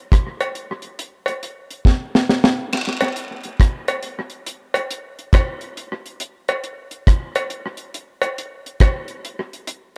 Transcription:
0.12 kick, cross-stick, closed hi-hat
0.40 closed hi-hat, cowbell
0.55 closed hi-hat
0.82 closed hi-hat
0.99 closed hi-hat
1.26 closed hi-hat, cowbell
1.43 closed hi-hat
1.71 closed hi-hat
1.85 kick, snare
2.15 snare
2.29 snare
2.44 snare
2.72 crash, vibraslap
3.01 closed hi-hat, cowbell
3.16 closed hi-hat
3.43 closed hi-hat
3.60 kick, cross-stick, closed hi-hat
3.88 closed hi-hat, cowbell
4.03 closed hi-hat
4.30 closed hi-hat
4.46 closed hi-hat
4.74 closed hi-hat, cowbell
4.91 closed hi-hat
5.19 closed hi-hat
5.33 kick, cross-stick, closed hi-hat, cowbell
5.61 closed hi-hat
5.77 closed hi-hat
6.06 closed hi-hat
6.20 closed hi-hat
6.48 closed hi-hat, cowbell
6.64 closed hi-hat
6.91 closed hi-hat
7.07 kick, cross-stick, closed hi-hat
7.35 closed hi-hat, cowbell
7.50 closed hi-hat
7.77 closed hi-hat
7.94 closed hi-hat
8.22 closed hi-hat, cowbell
8.38 closed hi-hat
8.66 closed hi-hat
8.80 kick, cross-stick, closed hi-hat, cowbell
9.08 closed hi-hat
9.25 closed hi-hat
9.53 closed hi-hat
9.67 closed hi-hat

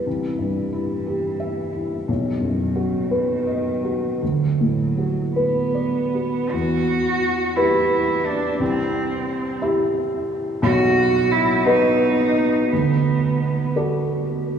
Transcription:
0.04 C2 E3
0.38 G2
0.73 E4
1.06 G4
1.40 E5
1.73 E4
2.08 B1 D#3
2.41 F#2
2.76 F#4
3.11 B4
3.47 D#5
3.84 F#4
4.21 D2 F#3
4.60 A2
4.98 F#4
5.34 B3 B4
5.75 D5
6.14 F#4
6.51 E2 F#4
7.56 E4 G4 B4
8.25 D4
8.60 C2 C4
9.62 E4 G4 E5
10.62 B1 F#4
11.31 E4
11.65 D#4 F#4 B4 D#5
12.70 D2 B3
13.76 F#4 A4 D5

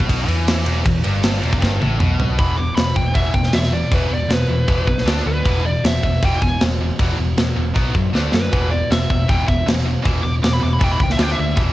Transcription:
Already playing: B1 B2
0.00 kick
0.09 kick, ride
0.27 E2 E3, ride
0.48 snare, ride
0.65 E1 E2, ride
0.85 E1 E2, kick, ride
1.04 G1 G2, ride
1.23 snare, ride
1.42 E1 E2, ride
1.53 kick
1.60 G1 G2, kick, snare
1.80 A1 A2, high tom
2.00 B1 B2, mid tom
2.20 floor tom
2.37 E1 E2 B2 E3 B5, kick, crash
2.56 E2 B2 D6
2.75 E1 E2 B2 B5, snare, crash
2.95 E1 E2 B2 G5, kick
3.14 E1 E2 B2 E3 E5, kick, crash
3.34 E1 E2 B2 G5, kick
3.44 snare
3.53 E1 E2 B2 E5, snare, crash
3.63 snare
3.72 E2 B2 D5
3.92 E1 E2 B2 E3 B4, kick, crash
4.10 E1 E2 B2
4.14 D5
4.28 E1 E2 B2, snare, crash
4.33 B4
4.48 E1 E2 B2
4.68 E1 E2 B2 E3, kick, crash
4.87 B1 E2 B2, kick
4.98 snare
5.05 D2 D3 A3 D4, snare, crash
5.18 snare
5.26 D2 D3 A3 B4
5.44 E1 E2 B2 E3, kick, crash
5.65 E2 B2 D5
5.84 E1 E2 B2 E5, snare, crash
6.03 E1 E2 B2, kick
6.23 E1 E2 B2 E3 G5, kick, crash
6.42 E1 E2 B2 G#5, kick
6.61 E1 E2 B2, snare, crash
6.81 E2 B2
6.99 E1 E2 B2 E3, kick, crash
7.18 E1 E2 B2
7.37 E1 E2 B2, snare, crash
7.56 E1 E2 B2
7.74 B1 B2 F#3 B3, kick, crash
7.94 F#2 B2 F#3, kick
8.13 D2 D3 A3 D4, snare
8.33 F#2 D3 A3 B4, snare
8.52 E1 E2 B2 E3, kick, crash
8.71 E2 B2 D5
8.90 E1 E2 B2 E5, snare, crash
9.10 E1 E2 B2, kick
9.28 E1 E2 B2 E3 G5, kick, crash
9.47 E1 E2 B2 E5, kick
9.66 E1 E2 B2, snare, crash
9.79 snare
9.86 E2 B2
10.03 E1 E2 B2 E3, kick, crash
10.23 E1 E2 B2 D6
10.43 E1 E2 B2 D6, snare, crash
10.53 B5
10.61 E1 E2 B2 D6
10.73 B5
10.79 E1 E2 B2 E3, kick, crash
10.84 G5
10.92 B5
10.99 C#2 E2 B2, kick
11.03 G5
11.10 E5, snare
11.17 D2 D3 A3 D4, snare, crash
11.22 G5
11.29 E5, snare
11.36 D2 D3 A3 E5
11.55 E1 E2 B2 E3, kick, crash

